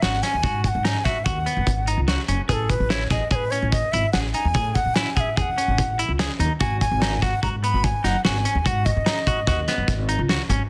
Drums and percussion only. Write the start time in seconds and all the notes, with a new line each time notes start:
0.02 snare, closed hi-hat
0.23 snare, closed hi-hat
0.43 kick, closed hi-hat
0.64 kick, closed hi-hat
0.85 snare, closed hi-hat
1.05 kick, snare, closed hi-hat
1.26 kick, closed hi-hat
1.46 closed hi-hat
1.67 kick, closed hi-hat
1.87 closed hi-hat
2.08 snare, closed hi-hat
2.28 closed hi-hat
2.49 kick, closed hi-hat
2.70 kick, closed hi-hat
2.90 snare, closed hi-hat
3.10 kick, snare, closed hi-hat
3.31 kick, closed hi-hat
3.52 closed hi-hat
3.72 kick, closed hi-hat
3.93 closed hi-hat
4.13 snare, closed hi-hat
4.34 closed hi-hat
4.54 kick, closed hi-hat
4.75 kick, closed hi-hat
4.96 snare, closed hi-hat
5.17 kick, closed hi-hat
5.37 kick, closed hi-hat
5.58 closed hi-hat
5.78 kick, closed hi-hat
5.99 closed hi-hat
6.19 snare, closed hi-hat
6.40 closed hi-hat
6.60 kick, closed hi-hat
6.81 kick, closed hi-hat
7.02 snare, closed hi-hat
7.22 kick, snare, closed hi-hat
7.43 kick, closed hi-hat
7.64 closed hi-hat
7.84 kick, closed hi-hat
8.05 snare, closed hi-hat
8.25 snare, closed hi-hat
8.45 closed hi-hat
8.66 kick, closed hi-hat
8.86 kick, closed hi-hat
9.06 snare, closed hi-hat
9.27 kick, closed hi-hat
9.47 kick, snare, closed hi-hat
9.68 snare, closed hi-hat
9.88 kick, snare, closed hi-hat
10.09 closed hi-hat
10.29 snare, closed hi-hat
10.50 closed hi-hat